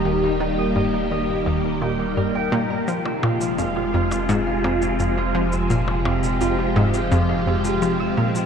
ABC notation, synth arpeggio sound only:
X:1
M:4/4
L:1/8
Q:1/4=85
K:Fm
V:1 name="Synth arpeggio sound" clef=bass
E,, E, G,, E,, E,, B,, G,, B,, | F, B,, F,, F,, A,, F,, F,, F, | B,, F,, F,, A,, F,, F,, F, B,, |]